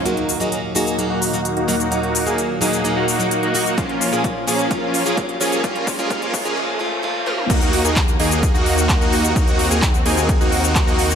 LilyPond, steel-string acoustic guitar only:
\new Staff \with { instrumentName = "Steel-string acoustic guitar" } { \time 4/4 \key ees \dorian \tempo 4 = 129 <ges bes ees' ges'>8. <ges bes ees' ges'>8. <ges bes ees' ges'>8 <ges bes ees' ges'>8. <ges bes ees' ges'>16 r8 <ges bes ees' ges'>16 r16 | <ges bes ees' ges'>8. <ges bes ees' ges'>8. <ges bes ees' ges'>8 <ges bes ees' ges'>8. <ges bes ees' ges'>16 r8 <ges bes ees' ges'>16 r16 | <bes, f bes des' f'>8. <bes, f bes des' f'>8. <bes, f bes des' f'>8 <bes, f bes des' f'>8. <bes, f bes des' f'>8. <bes, f bes des' f'>8 | <bes, f bes des' f'>8. <bes, f bes des' f'>16 <bes, f bes des' f'>8. <bes, f bes des' f'>16 <bes, f bes des' f'>8 <bes, f bes des' f'>8 <bes, f bes des' f'>8 <bes, f bes des' f'>8 |
r1 | r1 | }